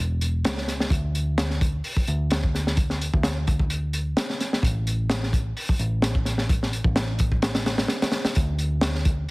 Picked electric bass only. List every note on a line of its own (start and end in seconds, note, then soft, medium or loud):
0.00 0.45 E1 medium
0.45 0.87 C#2 medium
0.90 1.80 D2 loud
2.08 3.09 D2 medium
3.13 4.13 D2 medium
4.63 5.52 A1 loud
5.79 6.80 A1 medium
6.85 7.85 A1 medium
8.36 9.25 D2 medium